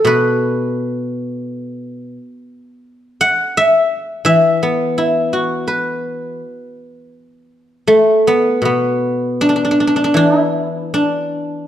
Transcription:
0.00 1.92 A4 medium
0.00 0.37 E5 medium
0.05 2.16 B2 soft
0.05 2.12 B4 medium
3.21 4.81 F#5 medium
3.57 4.25 E5 medium
4.25 6.39 E3 medium
4.25 7.83 E5 medium
4.63 6.05 B3 soft
4.98 6.41 E4 soft
5.33 6.77 F#4 soft
5.68 7.13 B4 soft
7.87 8.33 A3 medium
8.27 8.65 B3 medium
8.62 10.16 B2 soft
8.62 11.68 B3 medium
9.41 9.49 D4 medium
9.49 9.55 D4 soft
9.56 9.64 D4 soft
9.65 9.71 D4 soft
9.71 9.80 D4 soft
9.80 9.87 D4 soft
9.87 9.96 D4 soft
9.96 10.04 D4 soft
10.04 10.17 D4 soft
10.14 11.68 E3 soft
10.14 10.39 D4 medium
10.39 11.68 E4 medium
10.94 11.68 D4 medium

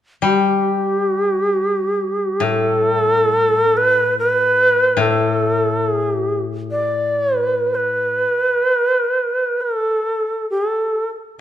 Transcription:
0.22 3.57 G3 soft
0.22 2.45 G4 medium
2.40 4.95 A2 soft
2.40 3.79 A4 medium
3.77 4.18 B4 medium
4.19 5.03 B4 medium
4.97 8.23 A2 soft
5.01 5.88 A4 medium
5.88 6.09 G#4 medium
6.09 6.42 G4 medium
6.71 7.38 D5 medium
7.38 7.75 B4 medium
7.75 9.63 B4 medium
9.61 10.50 A4 medium
10.50 10.68 G4 medium
10.68 11.10 A4 medium

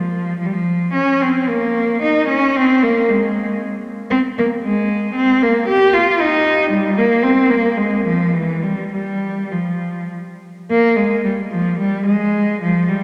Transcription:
0.00 0.38 F3 medium
0.39 0.45 F3 medium
0.46 0.53 G3 medium
0.53 0.94 F3 medium
0.93 1.20 C#4 medium
1.22 1.48 C4 medium
1.49 2.02 A#3 medium
2.02 2.28 D#4 medium
2.28 2.55 C#4 medium
2.56 2.82 C4 medium
2.83 3.09 A#3 medium
3.09 3.61 G#3 medium
4.10 4.18 C4 medium
4.38 4.46 A#3 medium
4.63 5.14 G#3 medium
5.15 5.41 C4 medium
5.42 5.68 A#3 medium
5.68 5.93 G4 medium
5.93 6.19 F4 medium
6.20 6.72 D#4 medium
6.71 6.97 G3 medium
6.98 7.25 A#3 medium
7.22 7.50 C4 medium
7.50 7.78 A#3 medium
7.77 8.05 G#3 medium
8.05 8.33 F3 medium
8.33 8.63 E3 medium
8.62 8.90 G3 medium
8.91 9.50 G3 medium
9.51 10.10 F3 medium
10.70 10.96 A#3 medium
10.96 11.24 G#3 medium
11.24 11.32 G3 medium
11.51 11.78 F3 medium
11.79 12.06 G3 medium
12.06 12.60 G#3 medium
12.62 12.88 F3 medium
12.88 13.03 G3 medium

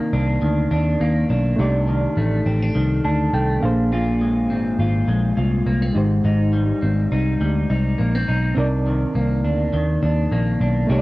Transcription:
0.00 1.58 C3 medium
0.00 0.41 D#3 medium
0.00 1.00 A#3 medium
0.00 1.54 C4 medium
0.00 0.13 D4 medium
0.00 1.55 D#4 medium
0.00 1.55 A#4 medium
0.00 1.56 D5 medium
0.13 0.37 C2 medium
0.13 0.71 D4 medium
0.42 0.66 D2 medium
0.42 1.65 D#3 medium
0.71 0.95 D#2 medium
0.71 1.30 D4 medium
1.00 1.24 D#2 medium
1.00 1.66 A#3 medium
1.30 1.53 B1 medium
1.30 1.60 D4 medium
1.56 2.05 C2 medium
1.56 3.70 C3 medium
1.56 3.58 A3 medium
1.56 2.46 D4 medium
1.56 3.59 D#4 medium
1.56 3.59 G4 medium
1.61 3.60 D5 medium
1.88 2.74 D#3 medium
2.17 2.40 A1 medium
2.17 3.32 A3 medium
2.46 2.69 A1 medium
2.46 2.62 C4 medium
2.62 3.03 D4 medium
2.75 2.99 C2 medium
2.75 3.69 D#3 medium
3.04 3.28 D2 medium
3.04 3.92 D4 medium
3.04 3.32 A5 medium
3.33 3.57 C2 medium
3.33 3.69 A3 medium
3.33 3.61 G5 medium
3.60 4.49 A#1 medium
3.60 3.91 A#2 medium
3.60 5.90 A#3 medium
3.60 5.91 D4 medium
3.60 5.92 G#4 medium
3.60 3.90 F5 medium
3.65 5.93 C5 medium
3.92 5.95 A#2 medium
3.92 4.78 F4 medium
4.21 5.08 G#3 medium
4.49 4.73 G#1 medium
4.49 5.66 C4 medium
4.79 5.02 G#1 medium
4.79 5.36 F4 medium
5.08 5.31 A#1 medium
5.08 6.53 G#3 medium
5.37 5.61 C2 medium
5.37 6.02 F4 medium
5.66 5.90 C2 medium
5.66 5.82 A#3 medium
5.82 6.02 C4 soft
5.93 6.19 G#1 medium
5.93 6.23 G#2 medium
5.93 8.23 G#3 medium
5.93 8.24 D#4 medium
5.93 8.25 G4 medium
5.98 8.25 C5 medium
6.24 6.71 G#1 medium
6.24 8.57 G#2 medium
6.24 7.12 D#4 medium
6.53 7.40 G3 medium
6.83 7.06 G#1 medium
6.83 7.98 C4 medium
7.12 7.35 C2 medium
7.12 7.70 D#4 medium
7.41 7.64 D2 medium
7.41 8.86 G3 medium
7.70 7.93 C2 medium
7.70 8.28 D#4 medium
7.98 8.23 A#1 medium
7.98 8.15 A#3 medium
8.15 8.64 C4 soft
8.28 8.52 B1 medium
8.28 8.57 D#4 medium
8.54 9.04 C2 medium
8.54 10.89 C3 medium
8.54 10.85 C4 medium
8.54 9.44 D4 medium
8.54 10.86 D#4 medium
8.54 10.86 A#4 medium
8.59 10.87 D5 medium
8.86 9.73 D#3 soft
9.15 9.45 C2 medium
9.15 10.31 A#3 medium
9.44 9.68 D2 medium
9.44 10.02 D4 medium
9.73 9.97 D#2 medium
9.73 10.96 D#3 medium
10.03 10.26 D#2 medium
10.03 10.61 D4 medium
10.32 10.55 A#1 medium
10.32 10.97 A#3 medium
10.61 10.84 B1 medium
10.61 10.91 D4 medium
10.87 11.02 C2 medium
10.87 11.02 C3 medium
10.87 11.02 A3 medium
10.87 11.02 D4 medium
10.87 11.02 D#4 medium
10.87 11.02 G4 medium
10.92 10.98 C#5 medium

